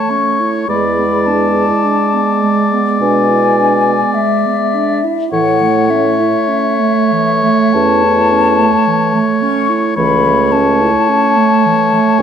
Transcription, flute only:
Already playing: A5
0.10 C#6
0.68 B5
1.26 A5
2.99 G#5
4.14 E5
5.32 F#5
5.90 E5
7.73 A5
9.41 C#6
9.96 B5
10.52 A5
12.18 G#5

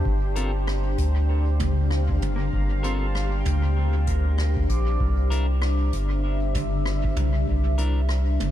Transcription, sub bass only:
0.05 G1
0.98 D2
2.22 G1
2.53 G1
3.46 D2
4.69 A#1
5.00 C2
5.93 G1
7.16 C2
7.48 C2
8.40 G1

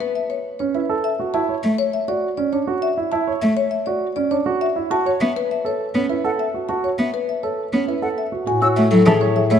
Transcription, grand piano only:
0.60 C#4
0.75 E4
0.89 A4
1.20 F#4
1.34 E4
1.49 C#5
2.08 F#4
2.38 C#4
2.53 D4
2.67 F#4
2.97 E4
3.12 E4
3.27 C#5
3.87 F#4
4.16 C#4
4.31 D4
4.46 F#4
4.76 E4
4.91 F#4
5.06 C#5
5.65 A4
5.95 C#4
6.09 E4
6.24 A4
6.54 F#4
6.69 F#4
6.84 C#5
7.43 A4
7.73 C#4
7.88 E4
8.02 A4
8.32 F#4
8.47 F#4
8.62 F#4
8.77 C#5
8.92 E4
9.06 G#4
9.21 C#5
9.37 G#4
9.51 E4

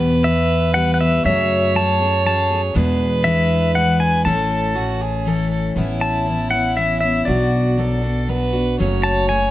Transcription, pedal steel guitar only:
0.24 E5
0.74 F#5
0.94 F#5
1.01 E5
1.26 E5
1.76 A5
2.26 A5
3.24 E5
3.75 F#5
4.00 G#5
4.25 A5
6.01 A5
6.51 F#5
6.77 E5
7.00 E5
7.25 D5
9.03 A5
9.29 G#5

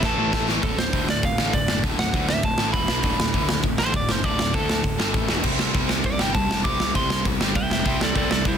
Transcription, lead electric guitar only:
0.04 A4 A5
0.63 A4
0.78 C5
1.10 D5
1.25 F5
1.54 D5
1.99 F#5
2.30 E5
2.45 A5
2.73 B5
3.79 C5
3.96 D5
4.11 C5
4.24 D5
4.55 A4
6.06 D5
6.21 G5
6.35 A5
6.64 D6
6.96 C6
7.56 E5 G5
7.72 E5 G5
7.87 E5 G5
8.03 A4 D5
8.16 A4 D5
8.31 A4 D5
8.48 E4 C5

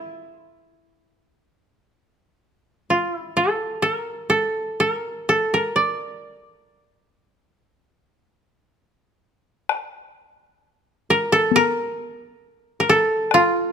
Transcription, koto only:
Already playing: E4 A4 A#4 D5
2.90 F4
3.14 E4
3.37 A4
3.82 A4
3.93 A#4
4.30 A4
4.80 A4
4.91 A#4
5.29 A4
5.54 A#4
5.76 D5
6.97 D#5
7.30 D5
7.65 D#5
7.98 D5
11.10 A#4
11.32 A4
11.56 A#4
12.80 A#4
12.89 A4
13.34 F4

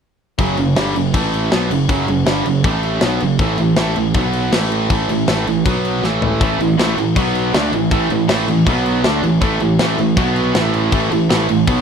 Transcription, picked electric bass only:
0.39 F#1
0.58 F#1
0.77 G1
0.96 F#1
1.14 A1
1.53 B1
1.71 F#1
1.89 F#1
2.08 F#1
2.26 G1
2.45 F#1
2.64 A1
3.02 B1
3.21 F#1
3.39 A1
3.59 A1
3.77 A1
3.97 A1
4.15 B1
4.53 A1
4.90 A1
5.09 A1
5.29 A1
5.47 A1
5.66 B1
6.03 A1
6.41 A1
6.59 A1
6.78 A1
6.97 A1
7.16 B1
7.53 D2
7.72 A1
7.91 A1
8.10 A1
8.29 A1
8.48 A1
8.67 B1
9.04 D2
9.22 A1
9.42 A1
9.61 A1
9.79 A1
9.98 A1
10.17 B1
10.55 A1
10.92 A1
11.11 A1
11.30 A1
11.49 A1
11.67 B1

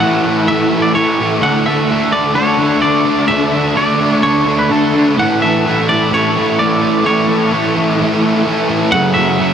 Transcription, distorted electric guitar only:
0.01 A2 E3 A3
0.25 E3 A3
0.48 A2 E3 A3
0.71 E3 A3
0.95 A2 E3 A3
1.19 E3 A3
1.41 D3 A3 D4
1.65 A3 D4
1.89 D3 A3 D4
2.13 A3 D4
2.35 D3 A3 D4
2.59 A3 D4
2.82 D3 A3 D4
3.05 A3 D4
3.29 D3 A3 D4
3.54 A3 D4
3.75 D3 A3 D4
4.00 A3 D4
4.23 D3 A3 D4
4.47 A3 D4
4.70 D3 A3 D4
4.93 A3 D4
5.18 A2 E3 A3
5.42 E3 A3
5.66 A2 E3 A3
5.89 E3 A3
6.11 A2 E3 A3
6.36 E3 A3
6.59 A2 E3 A3
6.82 E3 A3
7.05 A2 E3 A3
7.27 E3 A3
7.52 A2 E3 A3
7.75 E3 A3
7.99 A2 E3 A3
8.22 E3 A3
8.44 A2 E3 A3
8.68 E3 A3
8.92 F#2 C#3 F#3
9.15 C#3 F#3
9.39 F#2 C#3 F#3

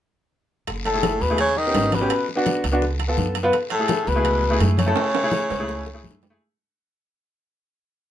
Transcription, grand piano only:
0.94 A3 E4 G#4
1.30 A3 E4 G#4
1.66 B3 C#4 G4
2.00 B3 C#4 G4
2.36 B3 D4 F#4
2.72 B3 D4 F#4
3.08 B3 F4 A4
3.43 B3 F4 B4
3.79 A3 E4 G#4
4.16 A3 E4 G#4
4.50 A3 E4 G#4
4.86 A3 E4 A4
5.23 A3 E4 G#4
5.59 A3 E4 G#4
5.94 A3 E4 G#4
6.30 A3 E4 G#4

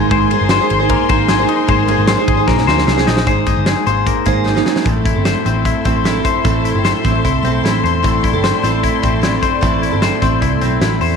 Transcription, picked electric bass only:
Already playing: G#1
0.41 G1
0.71 G#1
1.10 G#1
1.69 G#1
1.98 G#1
2.28 G#1
2.48 A#1
2.68 D2
2.87 C2
3.07 A#1
3.27 G#1
3.57 G1
3.87 G#1
4.27 G#1
4.86 A1
5.16 G1
5.46 A1
5.85 A1
6.45 A1
6.75 G1
7.05 A1
7.25 C2
7.44 B1
7.64 A1
7.84 E2
8.05 A1
8.33 G1
8.64 A1
9.03 A1
9.63 A1
9.93 G1
10.22 A1
10.42 C2
10.62 B1
10.82 A1
11.01 E2

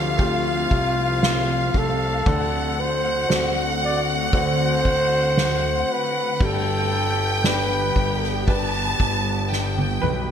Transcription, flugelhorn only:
Already playing: F4
1.77 A4
2.80 C5
3.85 D5
4.37 C5
5.92 B4
6.45 A4
7.49 B4

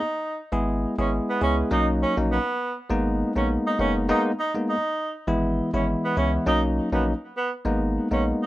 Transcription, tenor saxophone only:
Already playing: D#4
1.00 C#4
1.29 B3
1.43 C#4
1.72 D#4
2.02 C#4
2.32 B3
3.37 C#4
3.67 D#4
3.80 C#4
4.10 D#4
4.40 D#4
4.69 D#4
5.75 C#4
6.05 B3
6.18 C#4
6.48 D#4
6.94 B3
7.37 B3
8.13 C#4
8.43 D#4

